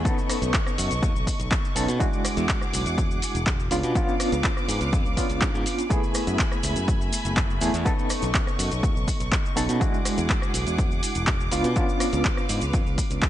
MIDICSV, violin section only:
0, 0, Header, 1, 2, 480
1, 0, Start_track
1, 0, Tempo, 487805
1, 52, Time_signature, 4, 2, 24, 8
1, 13082, End_track
2, 0, Start_track
2, 0, Title_t, "Violin section"
2, 0, Program_c, 0, 48
2, 0, Note_on_c, 0, 57, 80
2, 51, Note_on_c, 0, 75, 75
2, 51, Note_on_c, 0, 85, 87
2, 1932, Note_off_c, 0, 57, 0
2, 1952, Note_off_c, 0, 75, 0
2, 1952, Note_off_c, 0, 85, 0
2, 1966, Note_on_c, 0, 68, 82
2, 1968, Note_on_c, 0, 78, 75
2, 1968, Note_on_c, 0, 86, 91
2, 3632, Note_off_c, 0, 68, 0
2, 3633, Note_off_c, 0, 78, 0
2, 3633, Note_off_c, 0, 86, 0
2, 3646, Note_on_c, 0, 86, 95
2, 3648, Note_on_c, 0, 77, 76
2, 3650, Note_on_c, 0, 71, 80
2, 5787, Note_off_c, 0, 86, 0
2, 5789, Note_off_c, 0, 71, 0
2, 5789, Note_off_c, 0, 77, 0
2, 5805, Note_on_c, 0, 57, 79
2, 5806, Note_on_c, 0, 76, 76
2, 5806, Note_on_c, 0, 80, 77
2, 5810, Note_on_c, 0, 83, 90
2, 7710, Note_off_c, 0, 76, 0
2, 7710, Note_off_c, 0, 80, 0
2, 7712, Note_off_c, 0, 83, 0
2, 7730, Note_on_c, 0, 75, 76
2, 7730, Note_on_c, 0, 85, 87
2, 9610, Note_off_c, 0, 57, 0
2, 9632, Note_off_c, 0, 75, 0
2, 9632, Note_off_c, 0, 85, 0
2, 9653, Note_on_c, 0, 68, 82
2, 9653, Note_on_c, 0, 78, 78
2, 9654, Note_on_c, 0, 86, 91
2, 11316, Note_off_c, 0, 68, 0
2, 11316, Note_off_c, 0, 78, 0
2, 11331, Note_on_c, 0, 71, 81
2, 11331, Note_on_c, 0, 77, 74
2, 13082, Note_off_c, 0, 71, 0
2, 13082, Note_off_c, 0, 77, 0
2, 13082, Note_off_c, 0, 86, 0
2, 13082, End_track
0, 0, End_of_file